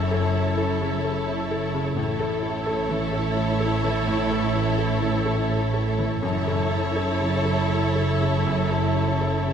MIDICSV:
0, 0, Header, 1, 8, 480
1, 0, Start_track
1, 0, Tempo, 701754
1, 1352, Time_signature, 3, 2, 24, 8
1, 3761, Tempo, 732601
1, 5201, Tempo, 757576
1, 6364, End_track
2, 0, Start_track
2, 0, Title_t, "Violin section"
2, 0, Program_c, 0, 48
2, 0, Note_on_c, 0, 73, 53
2, 1324, Note_off_c, 0, 73, 0
2, 1348, Note_on_c, 0, 73, 58
2, 4213, Note_off_c, 0, 73, 0
2, 4235, Note_on_c, 0, 73, 66
2, 6364, Note_off_c, 0, 73, 0
2, 6364, End_track
3, 0, Start_track
3, 0, Title_t, "Violin section"
3, 0, Program_c, 1, 48
3, 0, Note_on_c, 1, 69, 56
3, 1323, Note_off_c, 1, 69, 0
3, 1348, Note_on_c, 1, 69, 66
3, 4213, Note_off_c, 1, 69, 0
3, 4243, Note_on_c, 1, 69, 68
3, 6364, Note_off_c, 1, 69, 0
3, 6364, End_track
4, 0, Start_track
4, 0, Title_t, "Felt piano"
4, 0, Program_c, 2, 0
4, 0, Note_on_c, 2, 42, 59
4, 46, Control_c, 2, 64, 127
4, 77, Note_on_c, 2, 69, 45
4, 239, Note_on_c, 2, 64, 45
4, 332, Note_off_c, 2, 69, 0
4, 394, Note_on_c, 2, 69, 47
4, 493, Note_off_c, 2, 64, 0
4, 553, Note_on_c, 2, 49, 46
4, 652, Note_off_c, 2, 69, 0
4, 716, Note_on_c, 2, 69, 46
4, 811, Note_off_c, 2, 49, 0
4, 872, Note_on_c, 2, 64, 44
4, 972, Note_off_c, 2, 69, 0
4, 1035, Note_on_c, 2, 69, 49
4, 1129, Note_off_c, 2, 64, 0
4, 1192, Note_on_c, 2, 49, 51
4, 1288, Note_off_c, 2, 69, 0
4, 1322, Note_off_c, 2, 42, 0
4, 1345, Note_on_c, 2, 45, 56
4, 1350, Note_off_c, 2, 49, 0
4, 1364, Control_c, 2, 64, 0
4, 1473, Control_c, 2, 64, 127
4, 1506, Note_on_c, 2, 69, 46
4, 1660, Note_on_c, 2, 64, 51
4, 1761, Note_off_c, 2, 69, 0
4, 1823, Note_on_c, 2, 69, 51
4, 1918, Note_off_c, 2, 64, 0
4, 1981, Note_on_c, 2, 52, 46
4, 2080, Note_off_c, 2, 69, 0
4, 2139, Note_on_c, 2, 69, 47
4, 2238, Note_off_c, 2, 52, 0
4, 2304, Note_on_c, 2, 64, 50
4, 2398, Note_off_c, 2, 69, 0
4, 2464, Note_on_c, 2, 69, 49
4, 2562, Note_off_c, 2, 64, 0
4, 2624, Note_on_c, 2, 52, 50
4, 2722, Note_off_c, 2, 69, 0
4, 2757, Note_off_c, 2, 45, 0
4, 2786, Note_on_c, 2, 45, 61
4, 2800, Control_c, 2, 64, 0
4, 2884, Note_off_c, 2, 52, 0
4, 2914, Control_c, 2, 64, 127
4, 2949, Note_on_c, 2, 69, 43
4, 3110, Note_on_c, 2, 64, 51
4, 3208, Note_off_c, 2, 69, 0
4, 3271, Note_on_c, 2, 69, 49
4, 3370, Note_off_c, 2, 64, 0
4, 3434, Note_on_c, 2, 52, 42
4, 3532, Note_off_c, 2, 69, 0
4, 3595, Note_on_c, 2, 69, 49
4, 3696, Note_off_c, 2, 52, 0
4, 3758, Note_on_c, 2, 64, 43
4, 3857, Note_off_c, 2, 69, 0
4, 3917, Note_on_c, 2, 69, 49
4, 4016, Note_off_c, 2, 64, 0
4, 4080, Note_on_c, 2, 52, 48
4, 4175, Note_off_c, 2, 69, 0
4, 4214, Note_off_c, 2, 45, 0
4, 4238, Note_on_c, 2, 42, 63
4, 4240, Note_off_c, 2, 52, 0
4, 4253, Control_c, 2, 64, 0
4, 4368, Control_c, 2, 64, 127
4, 4400, Note_on_c, 2, 69, 45
4, 4557, Note_on_c, 2, 64, 43
4, 4653, Note_off_c, 2, 69, 0
4, 4719, Note_on_c, 2, 69, 43
4, 4812, Note_off_c, 2, 64, 0
4, 4874, Note_on_c, 2, 49, 44
4, 4975, Note_off_c, 2, 69, 0
4, 5040, Note_on_c, 2, 69, 42
4, 5135, Note_off_c, 2, 49, 0
4, 5205, Note_on_c, 2, 64, 42
4, 5298, Note_off_c, 2, 69, 0
4, 5365, Note_on_c, 2, 69, 45
4, 5459, Note_off_c, 2, 64, 0
4, 5523, Note_on_c, 2, 49, 41
4, 5621, Note_off_c, 2, 69, 0
4, 5657, Note_off_c, 2, 42, 0
4, 5686, Note_on_c, 2, 42, 54
4, 5696, Control_c, 2, 64, 0
4, 5781, Note_off_c, 2, 49, 0
4, 5788, Control_c, 2, 64, 127
4, 5848, Note_on_c, 2, 69, 42
4, 6002, Note_on_c, 2, 64, 41
4, 6101, Note_off_c, 2, 69, 0
4, 6160, Note_on_c, 2, 69, 42
4, 6258, Note_off_c, 2, 64, 0
4, 6320, Note_on_c, 2, 49, 34
4, 6364, Note_off_c, 2, 42, 0
4, 6364, Note_off_c, 2, 49, 0
4, 6364, Note_off_c, 2, 69, 0
4, 6364, End_track
5, 0, Start_track
5, 0, Title_t, "Harp"
5, 0, Program_c, 3, 46
5, 0, Note_on_c, 3, 42, 62
5, 0, Note_on_c, 3, 61, 47
5, 0, Note_on_c, 3, 64, 47
5, 0, Note_on_c, 3, 69, 50
5, 0, Note_on_c, 3, 73, 46
5, 147, Note_off_c, 3, 61, 0
5, 156, Note_on_c, 3, 61, 48
5, 385, Note_off_c, 3, 64, 0
5, 393, Note_on_c, 3, 64, 48
5, 623, Note_off_c, 3, 69, 0
5, 631, Note_on_c, 3, 69, 47
5, 862, Note_off_c, 3, 73, 0
5, 870, Note_on_c, 3, 73, 54
5, 1101, Note_off_c, 3, 69, 0
5, 1110, Note_on_c, 3, 69, 53
5, 1345, Note_on_c, 3, 45, 66
5, 1369, Note_off_c, 3, 42, 0
5, 1574, Note_off_c, 3, 61, 0
5, 1583, Note_on_c, 3, 61, 52
5, 1816, Note_off_c, 3, 64, 0
5, 1824, Note_on_c, 3, 64, 56
5, 2055, Note_off_c, 3, 69, 0
5, 2063, Note_on_c, 3, 69, 53
5, 2297, Note_off_c, 3, 73, 0
5, 2305, Note_on_c, 3, 73, 51
5, 2534, Note_off_c, 3, 69, 0
5, 2777, Note_off_c, 3, 45, 0
5, 2785, Note_on_c, 3, 45, 63
5, 3020, Note_off_c, 3, 61, 0
5, 3028, Note_on_c, 3, 61, 53
5, 3262, Note_off_c, 3, 64, 0
5, 3270, Note_on_c, 3, 64, 53
5, 3512, Note_on_c, 3, 69, 50
5, 3750, Note_off_c, 3, 73, 0
5, 3758, Note_on_c, 3, 73, 55
5, 3992, Note_off_c, 3, 69, 0
5, 4000, Note_on_c, 3, 69, 54
5, 4235, Note_on_c, 3, 42, 61
5, 4259, Note_off_c, 3, 45, 0
5, 4466, Note_off_c, 3, 61, 0
5, 4473, Note_on_c, 3, 61, 48
5, 4703, Note_off_c, 3, 64, 0
5, 4710, Note_on_c, 3, 64, 52
5, 4947, Note_off_c, 3, 69, 0
5, 4955, Note_on_c, 3, 69, 45
5, 5193, Note_off_c, 3, 73, 0
5, 5201, Note_on_c, 3, 73, 50
5, 5434, Note_off_c, 3, 69, 0
5, 5441, Note_on_c, 3, 69, 49
5, 5678, Note_off_c, 3, 42, 0
5, 5685, Note_on_c, 3, 42, 55
5, 5918, Note_off_c, 3, 61, 0
5, 5925, Note_on_c, 3, 61, 40
5, 6158, Note_off_c, 3, 64, 0
5, 6166, Note_on_c, 3, 64, 46
5, 6364, Note_off_c, 3, 42, 0
5, 6364, Note_off_c, 3, 61, 0
5, 6364, Note_off_c, 3, 64, 0
5, 6364, Note_off_c, 3, 69, 0
5, 6364, Note_off_c, 3, 73, 0
5, 6364, End_track
6, 0, Start_track
6, 0, Title_t, "Viola section"
6, 0, Program_c, 4, 48
6, 0, Note_on_c, 4, 64, 55
6, 1327, Note_off_c, 4, 64, 0
6, 1353, Note_on_c, 4, 64, 64
6, 4215, Note_off_c, 4, 64, 0
6, 4244, Note_on_c, 4, 64, 69
6, 6364, Note_off_c, 4, 64, 0
6, 6364, End_track
7, 0, Start_track
7, 0, Title_t, "Cello section"
7, 0, Program_c, 5, 48
7, 0, Note_on_c, 5, 42, 59
7, 1326, Note_off_c, 5, 42, 0
7, 1349, Note_on_c, 5, 45, 62
7, 4213, Note_off_c, 5, 45, 0
7, 4241, Note_on_c, 5, 42, 65
7, 6364, Note_off_c, 5, 42, 0
7, 6364, End_track
8, 0, Start_track
8, 0, Title_t, "Double bass section"
8, 0, Program_c, 6, 48
8, 0, Note_on_c, 6, 30, 55
8, 1322, Note_off_c, 6, 30, 0
8, 1349, Note_on_c, 6, 33, 67
8, 4213, Note_off_c, 6, 33, 0
8, 4240, Note_on_c, 6, 30, 65
8, 6364, Note_off_c, 6, 30, 0
8, 6364, End_track
0, 0, End_of_file